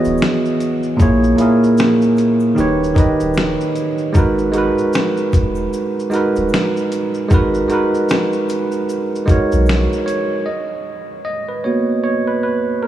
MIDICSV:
0, 0, Header, 1, 4, 480
1, 0, Start_track
1, 0, Key_signature, 5, "minor"
1, 0, Tempo, 789474
1, 605, Time_signature, 4, 2, 24, 8
1, 7827, End_track
2, 0, Start_track
2, 0, Title_t, "Tine electric piano"
2, 0, Program_c, 0, 4
2, 0, Control_c, 0, 64, 127
2, 0, Note_on_c, 0, 52, 78
2, 0, Note_on_c, 0, 59, 74
2, 0, Note_on_c, 0, 66, 70
2, 0, Note_on_c, 0, 68, 68
2, 0, Note_on_c, 0, 73, 67
2, 0, Note_on_c, 0, 75, 84
2, 0, Note_on_c, 0, 76, 85
2, 386, Note_off_c, 0, 52, 0
2, 390, Note_off_c, 0, 59, 0
2, 394, Note_off_c, 0, 66, 0
2, 399, Note_off_c, 0, 68, 0
2, 423, Note_off_c, 0, 75, 0
2, 588, Note_on_c, 0, 46, 86
2, 597, Note_on_c, 0, 58, 78
2, 606, Note_on_c, 0, 64, 80
2, 614, Control_c, 0, 64, 0
2, 614, Note_on_c, 0, 68, 74
2, 618, Note_off_c, 0, 73, 0
2, 619, Note_off_c, 0, 76, 0
2, 622, Note_on_c, 0, 73, 92
2, 733, Control_c, 0, 64, 127
2, 780, Note_off_c, 0, 46, 0
2, 785, Note_off_c, 0, 58, 0
2, 789, Note_off_c, 0, 64, 0
2, 793, Note_off_c, 0, 68, 0
2, 797, Note_off_c, 0, 73, 0
2, 830, Note_on_c, 0, 46, 72
2, 839, Note_on_c, 0, 58, 73
2, 847, Note_on_c, 0, 64, 75
2, 856, Note_on_c, 0, 68, 72
2, 865, Note_on_c, 0, 70, 81
2, 1520, Note_off_c, 0, 46, 0
2, 1524, Note_off_c, 0, 58, 0
2, 1528, Note_off_c, 0, 64, 0
2, 1532, Note_off_c, 0, 68, 0
2, 1537, Note_off_c, 0, 70, 0
2, 1549, Note_on_c, 0, 51, 86
2, 1557, Note_on_c, 0, 63, 78
2, 1566, Note_on_c, 0, 67, 73
2, 1573, Control_c, 0, 64, 0
2, 1574, Note_on_c, 0, 71, 77
2, 1583, Note_on_c, 0, 73, 92
2, 1682, Control_c, 0, 64, 127
2, 1760, Note_off_c, 0, 51, 0
2, 1764, Note_off_c, 0, 63, 0
2, 1768, Note_off_c, 0, 67, 0
2, 1772, Note_off_c, 0, 71, 0
2, 1777, Note_off_c, 0, 73, 0
2, 1787, Note_on_c, 0, 51, 81
2, 1796, Note_on_c, 0, 63, 76
2, 1805, Note_on_c, 0, 67, 67
2, 1814, Note_on_c, 0, 71, 74
2, 1822, Note_on_c, 0, 75, 83
2, 2305, Note_off_c, 0, 51, 0
2, 2309, Note_off_c, 0, 63, 0
2, 2313, Note_off_c, 0, 67, 0
2, 2318, Note_off_c, 0, 71, 0
2, 2322, Note_off_c, 0, 75, 0
2, 2509, Note_on_c, 0, 56, 84
2, 2517, Note_on_c, 0, 63, 82
2, 2527, Note_on_c, 0, 66, 80
2, 2532, Control_c, 0, 64, 0
2, 2536, Note_on_c, 0, 70, 81
2, 2544, Note_on_c, 0, 71, 92
2, 2623, Control_c, 0, 64, 127
2, 2701, Note_off_c, 0, 56, 0
2, 2705, Note_off_c, 0, 63, 0
2, 2710, Note_off_c, 0, 66, 0
2, 2714, Note_off_c, 0, 70, 0
2, 2718, Note_off_c, 0, 71, 0
2, 2747, Note_on_c, 0, 56, 76
2, 2757, Note_on_c, 0, 63, 70
2, 2765, Note_on_c, 0, 66, 72
2, 2774, Note_on_c, 0, 70, 72
2, 2784, Note_on_c, 0, 71, 91
2, 3438, Note_off_c, 0, 56, 0
2, 3443, Note_off_c, 0, 63, 0
2, 3447, Note_off_c, 0, 66, 0
2, 3452, Note_off_c, 0, 70, 0
2, 3456, Note_off_c, 0, 71, 0
2, 3708, Note_on_c, 0, 56, 78
2, 3715, Note_on_c, 0, 63, 74
2, 3724, Note_on_c, 0, 66, 73
2, 3733, Note_on_c, 0, 70, 75
2, 3742, Note_on_c, 0, 71, 87
2, 4225, Note_off_c, 0, 56, 0
2, 4229, Note_off_c, 0, 63, 0
2, 4233, Note_off_c, 0, 66, 0
2, 4238, Note_off_c, 0, 70, 0
2, 4242, Note_off_c, 0, 71, 0
2, 4428, Note_on_c, 0, 56, 83
2, 4438, Note_on_c, 0, 63, 80
2, 4446, Note_on_c, 0, 66, 78
2, 4455, Note_on_c, 0, 70, 78
2, 4464, Note_on_c, 0, 71, 95
2, 4620, Note_off_c, 0, 56, 0
2, 4625, Note_off_c, 0, 63, 0
2, 4629, Note_off_c, 0, 66, 0
2, 4634, Note_off_c, 0, 70, 0
2, 4638, Note_off_c, 0, 71, 0
2, 4669, Note_on_c, 0, 56, 74
2, 4679, Note_on_c, 0, 63, 75
2, 4687, Note_on_c, 0, 66, 66
2, 4695, Note_on_c, 0, 70, 70
2, 4704, Note_on_c, 0, 71, 82
2, 5359, Note_off_c, 0, 56, 0
2, 5364, Note_off_c, 0, 63, 0
2, 5368, Note_off_c, 0, 66, 0
2, 5372, Note_off_c, 0, 70, 0
2, 5376, Note_off_c, 0, 71, 0
2, 5626, Note_on_c, 0, 56, 77
2, 5637, Note_on_c, 0, 63, 73
2, 5645, Note_on_c, 0, 66, 73
2, 5653, Note_on_c, 0, 70, 71
2, 5662, Note_on_c, 0, 73, 85
2, 6109, Note_off_c, 0, 73, 0
2, 6116, Note_on_c, 0, 73, 78
2, 6144, Note_off_c, 0, 56, 0
2, 6149, Note_off_c, 0, 63, 0
2, 6154, Note_off_c, 0, 66, 0
2, 6158, Note_off_c, 0, 70, 0
2, 6358, Note_on_c, 0, 75, 85
2, 6368, Note_off_c, 0, 73, 0
2, 6373, Control_c, 0, 64, 0
2, 6477, Control_c, 0, 64, 127
2, 6817, Note_off_c, 0, 75, 0
2, 6838, Note_on_c, 0, 75, 85
2, 6978, Note_off_c, 0, 75, 0
2, 6983, Note_on_c, 0, 71, 69
2, 7074, Note_off_c, 0, 71, 0
2, 7078, Note_on_c, 0, 73, 73
2, 7082, Note_on_c, 0, 58, 52
2, 7086, Note_on_c, 0, 59, 47
2, 7089, Note_on_c, 0, 66, 56
2, 7304, Note_off_c, 0, 73, 0
2, 7318, Note_on_c, 0, 73, 80
2, 7423, Note_off_c, 0, 58, 0
2, 7425, Note_off_c, 0, 59, 0
2, 7427, Note_off_c, 0, 66, 0
2, 7463, Note_on_c, 0, 71, 78
2, 7473, Note_off_c, 0, 73, 0
2, 7552, Note_off_c, 0, 71, 0
2, 7559, Note_on_c, 0, 71, 70
2, 7798, Note_on_c, 0, 70, 80
2, 7809, Note_off_c, 0, 71, 0
2, 7827, Note_off_c, 0, 70, 0
2, 7827, End_track
3, 0, Start_track
3, 0, Title_t, "Sub bass"
3, 0, Program_c, 1, 38
3, 35, Note_on_c, 1, 27, 88
3, 114, Note_off_c, 1, 27, 0
3, 608, Note_on_c, 1, 34, 100
3, 814, Note_off_c, 1, 34, 0
3, 1566, Note_on_c, 1, 27, 110
3, 1900, Note_off_c, 1, 27, 0
3, 1954, Note_on_c, 1, 27, 85
3, 2161, Note_off_c, 1, 27, 0
3, 2524, Note_on_c, 1, 32, 96
3, 2859, Note_off_c, 1, 32, 0
3, 3244, Note_on_c, 1, 28, 90
3, 3452, Note_off_c, 1, 28, 0
3, 3873, Note_on_c, 1, 27, 95
3, 3953, Note_off_c, 1, 27, 0
3, 4444, Note_on_c, 1, 32, 99
3, 4652, Note_off_c, 1, 32, 0
3, 5793, Note_on_c, 1, 35, 93
3, 6000, Note_off_c, 1, 35, 0
3, 7827, End_track
4, 0, Start_track
4, 0, Title_t, "Drums"
4, 27, Note_on_c, 9, 82, 44
4, 29, Note_off_c, 9, 82, 0
4, 29, Note_on_c, 9, 82, 50
4, 90, Note_off_c, 9, 82, 0
4, 106, Note_on_c, 9, 82, 66
4, 135, Note_off_c, 9, 82, 0
4, 135, Note_on_c, 9, 38, 96
4, 135, Note_on_c, 9, 82, 62
4, 196, Note_off_c, 9, 38, 0
4, 196, Note_off_c, 9, 82, 0
4, 276, Note_on_c, 9, 82, 47
4, 336, Note_off_c, 9, 82, 0
4, 368, Note_on_c, 9, 42, 67
4, 368, Note_on_c, 9, 82, 48
4, 428, Note_off_c, 9, 42, 0
4, 429, Note_off_c, 9, 82, 0
4, 504, Note_on_c, 9, 82, 44
4, 565, Note_off_c, 9, 82, 0
4, 604, Note_on_c, 9, 82, 63
4, 606, Note_on_c, 9, 36, 104
4, 607, Note_off_c, 9, 82, 0
4, 607, Note_on_c, 9, 82, 70
4, 666, Note_off_c, 9, 36, 0
4, 668, Note_off_c, 9, 82, 0
4, 752, Note_on_c, 9, 82, 44
4, 812, Note_off_c, 9, 82, 0
4, 840, Note_on_c, 9, 82, 53
4, 841, Note_off_c, 9, 82, 0
4, 841, Note_on_c, 9, 42, 66
4, 841, Note_on_c, 9, 82, 49
4, 902, Note_off_c, 9, 42, 0
4, 902, Note_off_c, 9, 82, 0
4, 995, Note_on_c, 9, 82, 57
4, 1055, Note_off_c, 9, 82, 0
4, 1078, Note_on_c, 9, 82, 61
4, 1080, Note_off_c, 9, 82, 0
4, 1080, Note_on_c, 9, 82, 68
4, 1094, Note_on_c, 9, 38, 107
4, 1140, Note_off_c, 9, 82, 0
4, 1155, Note_off_c, 9, 38, 0
4, 1226, Note_on_c, 9, 82, 47
4, 1287, Note_off_c, 9, 82, 0
4, 1318, Note_on_c, 9, 82, 54
4, 1328, Note_off_c, 9, 82, 0
4, 1328, Note_on_c, 9, 42, 69
4, 1328, Note_on_c, 9, 82, 47
4, 1389, Note_off_c, 9, 42, 0
4, 1389, Note_off_c, 9, 82, 0
4, 1459, Note_on_c, 9, 82, 50
4, 1520, Note_off_c, 9, 82, 0
4, 1567, Note_on_c, 9, 82, 56
4, 1569, Note_off_c, 9, 82, 0
4, 1569, Note_on_c, 9, 82, 69
4, 1629, Note_off_c, 9, 82, 0
4, 1725, Note_on_c, 9, 82, 51
4, 1786, Note_off_c, 9, 82, 0
4, 1798, Note_on_c, 9, 82, 53
4, 1801, Note_on_c, 9, 36, 91
4, 1810, Note_off_c, 9, 82, 0
4, 1810, Note_on_c, 9, 42, 72
4, 1810, Note_on_c, 9, 82, 54
4, 1862, Note_off_c, 9, 36, 0
4, 1871, Note_off_c, 9, 42, 0
4, 1871, Note_off_c, 9, 82, 0
4, 1946, Note_on_c, 9, 82, 51
4, 1949, Note_off_c, 9, 82, 0
4, 1949, Note_on_c, 9, 82, 46
4, 2010, Note_off_c, 9, 82, 0
4, 2028, Note_on_c, 9, 82, 68
4, 2052, Note_off_c, 9, 82, 0
4, 2052, Note_on_c, 9, 38, 101
4, 2052, Note_on_c, 9, 82, 62
4, 2113, Note_off_c, 9, 38, 0
4, 2113, Note_off_c, 9, 82, 0
4, 2193, Note_on_c, 9, 82, 51
4, 2254, Note_off_c, 9, 82, 0
4, 2283, Note_on_c, 9, 42, 61
4, 2283, Note_on_c, 9, 82, 47
4, 2290, Note_off_c, 9, 82, 0
4, 2290, Note_on_c, 9, 82, 49
4, 2344, Note_off_c, 9, 42, 0
4, 2351, Note_off_c, 9, 82, 0
4, 2420, Note_on_c, 9, 82, 44
4, 2481, Note_off_c, 9, 82, 0
4, 2518, Note_on_c, 9, 82, 64
4, 2523, Note_on_c, 9, 36, 104
4, 2526, Note_off_c, 9, 82, 0
4, 2526, Note_on_c, 9, 82, 65
4, 2584, Note_off_c, 9, 36, 0
4, 2587, Note_off_c, 9, 82, 0
4, 2666, Note_on_c, 9, 82, 45
4, 2727, Note_off_c, 9, 82, 0
4, 2757, Note_on_c, 9, 42, 68
4, 2757, Note_on_c, 9, 82, 49
4, 2759, Note_off_c, 9, 82, 0
4, 2759, Note_on_c, 9, 82, 52
4, 2818, Note_off_c, 9, 42, 0
4, 2820, Note_off_c, 9, 82, 0
4, 2908, Note_on_c, 9, 82, 57
4, 2969, Note_off_c, 9, 82, 0
4, 2997, Note_on_c, 9, 82, 63
4, 2998, Note_off_c, 9, 82, 0
4, 2998, Note_on_c, 9, 82, 62
4, 3011, Note_on_c, 9, 38, 111
4, 3059, Note_off_c, 9, 82, 0
4, 3072, Note_off_c, 9, 38, 0
4, 3144, Note_on_c, 9, 82, 52
4, 3205, Note_off_c, 9, 82, 0
4, 3238, Note_on_c, 9, 82, 54
4, 3242, Note_on_c, 9, 36, 90
4, 3248, Note_off_c, 9, 82, 0
4, 3248, Note_on_c, 9, 42, 68
4, 3248, Note_on_c, 9, 82, 49
4, 3303, Note_off_c, 9, 36, 0
4, 3308, Note_off_c, 9, 42, 0
4, 3308, Note_off_c, 9, 82, 0
4, 3376, Note_on_c, 9, 82, 49
4, 3436, Note_off_c, 9, 82, 0
4, 3485, Note_on_c, 9, 82, 72
4, 3546, Note_off_c, 9, 82, 0
4, 3645, Note_on_c, 9, 82, 54
4, 3706, Note_off_c, 9, 82, 0
4, 3714, Note_on_c, 9, 82, 53
4, 3730, Note_off_c, 9, 82, 0
4, 3730, Note_on_c, 9, 42, 69
4, 3730, Note_on_c, 9, 82, 53
4, 3791, Note_off_c, 9, 42, 0
4, 3791, Note_off_c, 9, 82, 0
4, 3865, Note_on_c, 9, 82, 45
4, 3869, Note_off_c, 9, 82, 0
4, 3869, Note_on_c, 9, 82, 51
4, 3929, Note_off_c, 9, 82, 0
4, 3945, Note_on_c, 9, 82, 71
4, 3975, Note_off_c, 9, 82, 0
4, 3975, Note_on_c, 9, 38, 99
4, 3975, Note_on_c, 9, 82, 63
4, 4036, Note_off_c, 9, 38, 0
4, 4036, Note_off_c, 9, 82, 0
4, 4114, Note_on_c, 9, 82, 49
4, 4175, Note_off_c, 9, 82, 0
4, 4206, Note_on_c, 9, 42, 65
4, 4206, Note_on_c, 9, 82, 46
4, 4208, Note_off_c, 9, 82, 0
4, 4208, Note_on_c, 9, 82, 51
4, 4267, Note_off_c, 9, 42, 0
4, 4269, Note_off_c, 9, 82, 0
4, 4343, Note_on_c, 9, 82, 44
4, 4403, Note_off_c, 9, 82, 0
4, 4439, Note_on_c, 9, 82, 64
4, 4444, Note_on_c, 9, 36, 115
4, 4447, Note_off_c, 9, 82, 0
4, 4447, Note_on_c, 9, 82, 68
4, 4505, Note_off_c, 9, 36, 0
4, 4507, Note_off_c, 9, 82, 0
4, 4586, Note_on_c, 9, 82, 45
4, 4647, Note_off_c, 9, 82, 0
4, 4679, Note_on_c, 9, 42, 65
4, 4679, Note_on_c, 9, 82, 46
4, 4682, Note_off_c, 9, 82, 0
4, 4682, Note_on_c, 9, 82, 51
4, 4740, Note_off_c, 9, 42, 0
4, 4742, Note_off_c, 9, 82, 0
4, 4831, Note_on_c, 9, 82, 53
4, 4891, Note_off_c, 9, 82, 0
4, 4916, Note_on_c, 9, 82, 65
4, 4920, Note_off_c, 9, 82, 0
4, 4920, Note_on_c, 9, 82, 61
4, 4931, Note_on_c, 9, 38, 109
4, 4981, Note_off_c, 9, 82, 0
4, 4991, Note_off_c, 9, 38, 0
4, 5063, Note_on_c, 9, 82, 48
4, 5124, Note_off_c, 9, 82, 0
4, 5161, Note_on_c, 9, 82, 54
4, 5167, Note_off_c, 9, 82, 0
4, 5167, Note_on_c, 9, 42, 70
4, 5167, Note_on_c, 9, 82, 49
4, 5227, Note_off_c, 9, 42, 0
4, 5227, Note_off_c, 9, 82, 0
4, 5299, Note_on_c, 9, 82, 41
4, 5300, Note_off_c, 9, 82, 0
4, 5300, Note_on_c, 9, 82, 50
4, 5361, Note_off_c, 9, 82, 0
4, 5405, Note_on_c, 9, 82, 62
4, 5409, Note_off_c, 9, 82, 0
4, 5409, Note_on_c, 9, 82, 68
4, 5470, Note_off_c, 9, 82, 0
4, 5566, Note_on_c, 9, 82, 56
4, 5626, Note_off_c, 9, 82, 0
4, 5639, Note_on_c, 9, 82, 54
4, 5641, Note_on_c, 9, 36, 88
4, 5651, Note_off_c, 9, 82, 0
4, 5651, Note_on_c, 9, 42, 73
4, 5651, Note_on_c, 9, 82, 53
4, 5701, Note_off_c, 9, 36, 0
4, 5711, Note_off_c, 9, 42, 0
4, 5711, Note_off_c, 9, 82, 0
4, 5786, Note_on_c, 9, 82, 49
4, 5791, Note_off_c, 9, 82, 0
4, 5791, Note_on_c, 9, 82, 48
4, 5852, Note_off_c, 9, 82, 0
4, 5873, Note_on_c, 9, 82, 64
4, 5894, Note_off_c, 9, 82, 0
4, 5894, Note_on_c, 9, 38, 101
4, 5894, Note_on_c, 9, 82, 65
4, 5955, Note_off_c, 9, 38, 0
4, 5955, Note_off_c, 9, 82, 0
4, 6036, Note_on_c, 9, 82, 47
4, 6097, Note_off_c, 9, 82, 0
4, 6127, Note_on_c, 9, 42, 65
4, 6127, Note_on_c, 9, 82, 45
4, 6133, Note_off_c, 9, 82, 0
4, 6133, Note_on_c, 9, 82, 51
4, 6188, Note_off_c, 9, 42, 0
4, 6194, Note_off_c, 9, 82, 0
4, 7827, End_track
0, 0, End_of_file